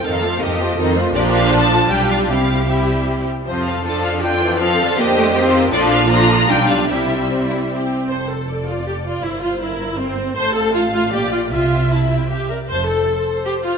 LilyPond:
<<
  \new Staff \with { instrumentName = "Violin section" } { \time 3/4 \key f \major \tempo 4 = 157 f''4 ees''4. r8 | d''8 f''8 a''4 g''8 f''8 | f''4 e''4 r4 | c''8 f''8 a''8 f''8 g''4 |
f''4 ees''4. r8 | d''8 f''8 bes''4 g''8 f''8 | e''2 r4 | a'8 c''8 a'8 c''8 a'8 c''8 |
bes'8 c''8 bes'8 c''8 bes'8 c''8 | a''8 f''8 a''8 f''8 f''8 g''8 | e''8 g''8 a''8 g''8 e''8 d''8 | a''8 r2 r8 | }
  \new Staff \with { instrumentName = "Violin section" } { \time 3/4 \key f \major << { a'8 c''8 a'8 c''8 a'8 c''8 | bes'4 a'4 g'4 | g'4 g'4. r8 | a'2 a'4~ |
a'4 c''4 c''4 | a'4 a'4 g'4 | g'4 c'8 e'8 g'4 | a'4 d''2 |
c''4 bes'4 c''4 | a'4 f''4 d''4 | e''2~ e''8 r8 | r4 c''2 | } \\ { ees'8 f'8 ees'8 f'8 ees'8 f'8 | f'2 f'4 | e'4 e'4. r8 | f'4 f'4 f'4 |
f'4 g'4 f'4 | f'4 f'4 f'4 | e'4 r2 | r2. |
r2. | r2. | r2. | r2. | } >> }
  \new Staff \with { instrumentName = "Cello section" } { \time 3/4 \key f \major a'4 g'4 f'4 | g'4 f'4 g'4 | g'2~ g'8 r8 | r4 a'4 f'4 |
a'4 g'2 | f'2 d'4 | e'2~ e'8 r8 | f,2. |
g,2. | a,2 bes,4 | c2~ c8 r8 | f,4 r2 | }
  \new Staff \with { instrumentName = "Viola section" } { \time 3/4 \key f \major << { c'8 a8 c'8 a8 c'8 a8 | d'2 d'4 | c'4 c'4. r8 | c'4 d'2 |
c'4 bes8 a8 c'4 | d'4 d'4 d'4 | c'2 c'4 | c''8 a'4 f'8 g'8 f'8 |
e'8 f'8 e'4 c'4 | c''8 a'8 f'8 f'8 g'8 f'8 | f'4 e'4 g'8 bes'8 | c''8 a'4. g'8 f'8 | } \\ { ees8 f8 ees8 f8 ees8 f8 | f2 g4 | g4 g4. r8 | f4 f4 d8 e8 |
f8 d4. ees4 | f4 f4 g4 | g2 r4 | r2. |
r2. | r2. | r2. | r2. | } >> }
  \new Staff \with { instrumentName = "Double bass section" } { \clef bass \time 3/4 \key f \major f,4 f,4 f,4 | bes,,2 b,,4 | c,2~ c,8 r8 | f,2.~ |
f,2. | bes,,2 b,,4 | c,2~ c,8 r8 | f,,2. |
g,,2. | a,,2 bes,,4 | c,2~ c,8 r8 | f,,4 r2 | }
>>